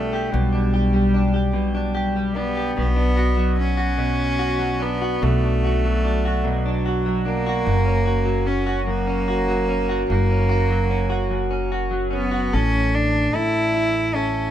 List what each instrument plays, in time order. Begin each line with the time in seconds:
Already playing: upright bass B1, clean electric guitar B2 G3 D4 G4, cello A3
0.13 clean electric guitar G4
0.32 upright bass B1, clean electric guitar B2, cello G3
0.53 clean electric guitar D4
0.74 clean electric guitar G4
0.94 clean electric guitar G3
1.14 clean electric guitar D4
1.34 clean electric guitar G4
1.53 clean electric guitar B2, cello G3
1.75 clean electric guitar D4
1.95 clean electric guitar G4
2.16 clean electric guitar G3
2.36 cello B3, clean electric guitar D4
2.57 clean electric guitar G4
2.77 upright bass B1, clean electric guitar B2, cello B3
2.96 clean electric guitar D4
3.17 clean electric guitar F#4
3.37 clean electric guitar F#3
3.59 cello C#4
3.77 clean electric guitar F#4
3.98 clean electric guitar B2
4.39 clean electric guitar F#4
4.59 clean electric guitar F#3
4.80 cello B3, clean electric guitar D4
5.02 clean electric guitar F#4
5.22 upright bass B1, clean electric guitar B2, cello A3
5.43 clean electric guitar D4
5.64 clean electric guitar F#4
5.84 clean electric guitar F#3
6.04 clean electric guitar D4
6.25 clean electric guitar F#4
6.44 clean electric guitar B2, cello F#3
6.66 clean electric guitar D4
6.86 clean electric guitar F#4
7.06 clean electric guitar F#3
7.25 cello A#3, clean electric guitar D4
7.46 clean electric guitar F#4
7.65 upright bass F#1, clean electric guitar F#2
7.85 clean electric guitar C#4
8.05 clean electric guitar F#4
8.26 clean electric guitar F#3
8.46 clean electric guitar C#4, cello C#4
8.67 clean electric guitar F#4
8.87 clean electric guitar F#2, cello A#3
9.07 clean electric guitar C#4
9.28 clean electric guitar F#4
9.48 clean electric guitar F#3
9.69 clean electric guitar C#4
9.89 clean electric guitar F#4
10.10 upright bass F#1, clean electric guitar F#2, cello A#3
10.30 clean electric guitar C#4
10.49 clean electric guitar F#4
10.70 clean electric guitar F#3
10.90 clean electric guitar C#4
11.10 clean electric guitar F#4
11.30 clean electric guitar F#2
11.51 clean electric guitar C#4
11.72 clean electric guitar F#4
11.91 clean electric guitar F#3
12.11 cello B3, clean electric guitar C#4
12.31 clean electric guitar F#4
12.53 upright bass A1, clean electric guitar A2 A4, cello C#4
12.95 cello D4
13.33 upright bass A1, cello E4, clean electric guitar A4
13.74 clean electric guitar E4
14.15 cello C#4, clean electric guitar A4